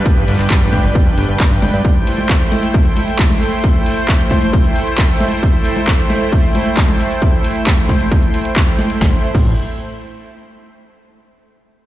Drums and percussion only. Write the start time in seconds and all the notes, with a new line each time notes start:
0.06 kick, closed hi-hat
0.28 open hi-hat
0.39 clap, closed hi-hat
0.50 kick, clap, closed hi-hat
0.62 closed hi-hat
0.73 kick, open hi-hat, high conga
0.84 closed hi-hat
0.95 kick, closed hi-hat
1.06 closed hi-hat
1.17 open hi-hat
1.29 closed hi-hat
1.40 kick, clap, closed hi-hat
1.51 closed hi-hat
1.62 open hi-hat, high conga
1.73 closed hi-hat
1.85 kick, closed hi-hat
2.07 open hi-hat
2.18 closed hi-hat, high conga
2.29 kick, clap, closed hi-hat
2.52 open hi-hat, high conga
2.63 closed hi-hat
2.74 kick, closed hi-hat
2.85 closed hi-hat
2.97 open hi-hat, high conga
3.08 closed hi-hat
3.19 kick, clap, closed hi-hat
3.30 closed hi-hat, high conga
3.41 open hi-hat
3.53 closed hi-hat
3.64 kick, closed hi-hat
3.86 open hi-hat
3.97 closed hi-hat
4.08 kick, clap, closed hi-hat
4.31 kick, open hi-hat, high conga
4.42 closed hi-hat
4.53 kick, closed hi-hat
4.64 closed hi-hat
4.76 open hi-hat
4.87 closed hi-hat
4.98 kick, clap, closed hi-hat
5.09 closed hi-hat
5.20 open hi-hat, high conga
5.32 closed hi-hat
5.43 kick, closed hi-hat
5.65 open hi-hat
5.76 closed hi-hat, high conga
5.88 kick, clap, closed hi-hat
6.10 open hi-hat, high conga
6.21 closed hi-hat
6.32 kick, closed hi-hat
6.44 closed hi-hat
6.55 open hi-hat, high conga
6.66 closed hi-hat
6.77 kick, clap, closed hi-hat
6.88 closed hi-hat, high conga
6.99 open hi-hat
7.11 closed hi-hat
7.22 kick, closed hi-hat
7.44 open hi-hat
7.55 closed hi-hat
7.67 kick, clap, closed hi-hat
7.78 closed hi-hat
7.89 kick, open hi-hat, high conga
8.00 closed hi-hat
8.11 kick, closed hi-hat
8.23 closed hi-hat
8.34 open hi-hat
8.45 closed hi-hat
8.56 kick, clap, closed hi-hat
8.68 closed hi-hat
8.79 open hi-hat, high conga
8.90 closed hi-hat
9.01 kick, snare
9.35 kick, crash